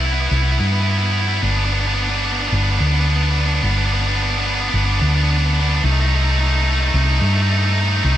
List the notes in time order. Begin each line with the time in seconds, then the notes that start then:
Already playing: C2
0.04 B3 E4
0.12 B3 E4
0.20 B3 E4
0.27 B3 E4
0.31 C2 B3
0.37 E4
0.42 B3 E4
0.49 B3 E4
0.57 G2 B3 E4
0.65 B3 E4
0.72 B3 E4
0.81 B3 E4
0.88 B3 E4
0.95 B3 E4
1.02 B3 E4
1.11 B3 E4
1.18 B3 E4
1.26 B3 E4
1.33 B3 E4
1.42 G1 B3 D4
1.50 B3 D4
1.56 B3 D4
1.65 B3 D4
1.72 B3 D4
1.79 B3 D4
1.87 B3 D4
1.94 B3 D4
2.02 B3 D4
2.09 B3 D4
2.17 B3 D4
2.25 B3 D4
2.33 B3 D4
2.40 B3 D4
2.48 B3 D4
2.52 G1 B3 D4
2.63 B3 D4
2.70 B3 D4
2.78 D2 B3 D4
2.86 B3 D4
2.93 B3 D4
3.01 B3 D4
3.07 B3 D4
3.16 B3 D4
3.23 B3 D4
3.31 B3 D4
3.39 B3 D4
3.45 B3 D4
3.53 B3 D4
3.62 G1 B3 D4
3.70 B3 D4
3.77 B3 D4
3.86 B3 D4
3.93 B3 D4
4.01 B3 D4
4.08 B3 D4
4.16 B3 D4
4.24 B3 D4
4.32 B3 D4
4.38 B3 D4
4.46 B3 D4
4.54 B3 D4
4.60 B3 D4
4.69 B3 D4
4.74 G1 B3 D4
4.84 B3 D4
4.92 B3 D4
5.00 D2 B3 D4
5.07 B3 D4
5.15 B3 D4
5.23 B3 D4
5.30 B3 D4
5.38 B3 D4
5.46 B3 D4
5.53 B3 D4
5.60 B3 D4
5.69 B3 D4
5.76 B3 D4
5.84 C2 A3 D#4
5.91 A3 D#4
6.00 A3 D#4
6.07 A3 D#4
6.14 A3 D#4
6.22 A3 D#4
6.29 A3 D#4
6.37 A3 D#4
6.44 A3
6.49 A3 D#4
6.55 D#4
6.59 A3
6.64 D#4
6.68 A3 D#4
6.75 A3
6.80 A3 D#4
6.87 A3 D#4
6.94 C2 A3 D#4
7.03 A3 D#4
7.10 A3 D#4
7.19 G2 A3 D#4
7.26 A3 D#4
7.34 A3 D#4
7.42 A3 D#4
7.50 A3 D#4
7.58 A3 D#4
7.65 A3 D#4
7.72 A3 D#4
7.81 A3 D#4
7.89 A3 D#4
7.96 A3 D#4
8.04 C2 A3 D#4
8.12 A3 D#4